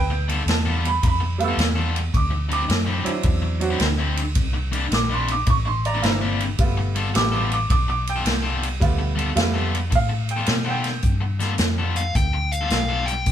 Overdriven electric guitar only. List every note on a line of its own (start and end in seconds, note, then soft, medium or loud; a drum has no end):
0.10 muted overdriven electric guitar stroke soft
0.28 0.41 G3 medium
0.28 0.41 B3 loud
0.28 0.41 F4 medium
0.28 0.41 A4 loud
0.48 muted overdriven electric guitar stroke soft
0.65 0.87 G3 medium
0.65 0.87 B3 medium
0.65 0.87 F4 medium
0.65 0.87 A4 medium
1.03 muted overdriven electric guitar stroke soft
1.20 muted overdriven electric guitar stroke soft
1.48 1.64 G3 medium
1.48 1.64 B3 medium
1.48 1.64 F4 medium
1.48 1.64 A4 medium
1.75 1.98 G3 medium
1.75 1.98 B3 medium
1.75 1.98 F4 medium
1.75 1.98 A4 loud
2.30 muted overdriven electric guitar stroke medium
2.49 2.62 D3 medium
2.49 2.62 F#3 loud
2.49 2.63 C4 medium
2.49 2.63 E4 medium
2.68 muted overdriven electric guitar stroke medium
2.86 3.09 D3 medium
2.86 3.09 F#3 medium
2.86 3.09 C4 medium
2.86 3.09 E4 medium
3.24 muted overdriven electric guitar stroke soft
3.42 muted overdriven electric guitar stroke soft
3.70 3.86 D3 medium
3.70 3.86 F#3 medium
3.70 3.86 C4 medium
3.70 3.86 E4 medium
3.98 4.21 D3 medium
3.98 4.21 F#3 medium
3.98 4.20 C4 medium
3.98 4.20 E4 loud
4.53 muted overdriven electric guitar stroke soft
4.72 4.85 C3 medium
4.72 4.85 A#3 medium
4.72 4.85 D4 loud
4.72 4.85 E4 medium
4.91 muted overdriven electric guitar stroke medium
5.09 5.32 C3 medium
5.09 5.32 A#3 medium
5.09 5.32 D4 medium
5.09 5.31 E4 medium
5.46 muted overdriven electric guitar stroke soft
5.65 muted overdriven electric guitar stroke medium
5.94 6.10 C3 medium
5.94 6.09 A#3 medium
5.94 6.09 D4 medium
5.94 6.09 E4 medium
6.21 6.44 C3 medium
6.21 6.44 A#3 medium
6.21 6.43 D4 medium
6.21 6.43 E4 loud
6.77 muted overdriven electric guitar stroke medium
6.95 7.08 G3 medium
6.95 7.09 B3 medium
6.95 7.08 F4 medium
6.95 7.09 A4 loud
7.14 muted overdriven electric guitar stroke soft
7.32 7.55 G3 medium
7.32 7.55 B3 medium
7.32 7.55 F4 medium
7.32 7.54 A4 medium
7.71 muted overdriven electric guitar stroke soft
7.88 muted overdriven electric guitar stroke soft
8.16 8.32 G3 medium
8.16 8.32 B3 medium
8.16 8.32 F4 medium
8.16 8.31 A4 medium
8.43 8.66 G3 medium
8.43 8.66 B3 medium
8.43 8.65 F4 loud
8.43 8.65 A4 loud
8.99 muted overdriven electric guitar stroke soft
9.15 9.29 G3 medium
9.15 9.30 B3 loud
9.15 9.30 F4 medium
9.15 9.30 A4 medium
9.36 muted overdriven electric guitar stroke soft
9.54 9.77 G3 medium
9.54 9.77 B3 medium
9.54 9.76 F4 medium
9.54 9.76 A4 medium
9.90 muted overdriven electric guitar stroke soft
10.09 muted overdriven electric guitar stroke medium
10.36 10.54 G3 medium
10.36 10.53 B3 medium
10.36 10.53 F4 medium
10.36 10.53 A4 medium
10.65 10.88 G3 medium
10.65 10.88 B3 medium
10.65 10.88 F4 loud
10.65 10.87 A4 loud
11.21 muted overdriven electric guitar stroke soft
11.40 11.53 G3 medium
11.40 11.53 B3 medium
11.40 11.53 F4 medium
11.40 11.53 A4 loud
11.59 muted overdriven electric guitar stroke soft
11.78 12.00 G3 medium
11.78 12.00 B3 medium
11.78 12.00 F4 medium
11.78 12.00 A4 medium
12.15 muted overdriven electric guitar stroke soft
12.33 muted overdriven electric guitar stroke soft
12.61 12.77 G3 medium
12.61 12.77 B3 medium
12.61 12.77 F4 medium
12.61 12.77 A4 medium
12.89 13.11 G3 medium
12.89 13.11 B3 medium
12.89 13.11 F4 medium
12.89 13.11 A4 medium